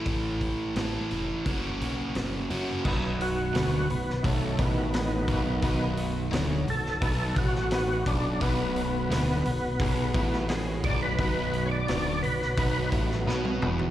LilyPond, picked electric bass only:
\new Staff \with { instrumentName = "Picked electric bass" } { \clef bass \time 4/4 \key fis \dorian \tempo 4 = 86 a,,4 a,,8 eis,,8 fis,,8 b,,8 fis,,8 fis,8 | \key b \major b,,,4 d,,8 b,,,8 b,,,8 a,,4 b,,,8 | b,,,4 d,,8 b,,,8 b,,,8 a,,4 b,,,8 | b,,,4 d,,8 b,,,8 b,,,8 a,,4 b,,,8 |
b,,,4 d,,8 b,,,8 b,,,8 a,,8 b,,8 e,,8 | }